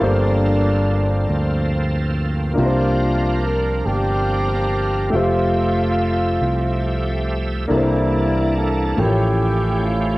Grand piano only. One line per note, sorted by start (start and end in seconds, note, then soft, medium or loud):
0.00 1.25 G2 medium
0.00 2.52 A#3 soft
0.00 2.52 F4 soft
0.00 2.53 G4 soft
0.00 2.54 A4 soft
0.00 2.55 C5 medium
2.54 3.81 C3 soft
2.54 5.08 A#3 medium
2.54 5.08 D4 soft
2.54 5.09 F4 soft
2.58 5.10 G4 soft
2.58 2.65 A#4 soft
2.66 5.14 C5 medium
5.10 7.64 A3 medium
5.10 7.66 F4 soft
5.10 7.65 E5 soft
5.14 7.66 G4 soft
5.14 7.67 C5 soft
7.68 8.94 C3 soft
7.68 8.97 A#3 medium
7.68 8.98 D4 soft
7.68 8.98 E4 soft
7.68 8.98 A4 soft
7.68 7.77 A#4 soft
7.77 9.02 C5 medium
8.96 10.18 A2 soft
8.96 10.18 F3 soft
8.96 10.18 A3 soft
8.96 10.18 G4 soft
8.96 9.05 A#4 soft
8.96 10.18 E5 soft
9.06 10.18 C#5 soft